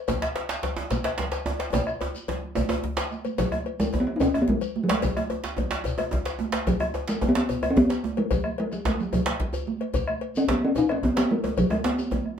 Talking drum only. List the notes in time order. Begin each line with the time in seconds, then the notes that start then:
3.40 F#3
3.80 G#3
4.00 B3
4.07 B3
4.16 D#4
4.21 C#4
4.42 B3
4.49 G#3
4.84 F#3
4.90 G#3
5.04 F#3
6.67 F#3
7.09 G#3
7.29 B3
7.36 B3
7.70 C#4
7.77 B3
8.18 G#3
8.31 F#3
8.60 G#3
8.73 F#3
8.87 G#3
9.01 F#3
9.14 F#3
10.37 C#4
10.51 B3
10.65 C#4
10.78 D#4
10.92 C#4
11.04 B3
11.18 B3
11.31 G#3
11.45 G#3
11.59 F#3
11.72 G#3
11.85 B3
11.99 B3